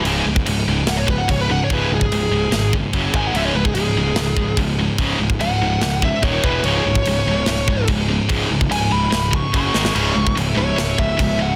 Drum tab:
CC |x---x---x---x---|x---x---x---x---|x---x---x---x---|x---x---x---x---|
SD |--------o-------|--------o-------|--------o-------|--------o-------|
BD |---o------o-o---|o--o------o-o-o-|---o------o-o---|o--o------o-o-o-|

CC |x---x---x---x---|x---x---x---x---|x---x---x---x---|
SD |--------o-------|--------o-----oo|--------o-------|
BD |---o------o-o---|o--o------o-o---|---o------o-o---|